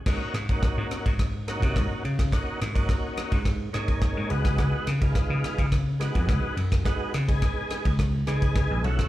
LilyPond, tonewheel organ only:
\new Staff \with { instrumentName = "Tonewheel organ" } { \time 4/4 \key des \major \tempo 4 = 106 <bes des' ees' ges'>8 r16 <bes des' ees' ges'>4~ <bes des' ees' ges'>16 r8 <bes des' ees' ges'>4 r8 | <bes des' ees' ges'>8 r16 <bes des' ees' ges'>4~ <bes des' ees' ges'>16 r8 <bes des' ees' aes'>4 <aes ces' ees' ges'>8~ | <aes ces' ees' ges'>8 r16 <aes ces' ees' f'>4~ <aes ces' ees' f'>16 r8 <aes ces' ees' ges'>4 r8 | <aes ces' ees' ges'>8 r16 <aes ces' ees' aes'>4~ <aes ces' ees' aes'>16 r8 <aes ces' ees' aes'>4 <a cis' e' fis'>8 | }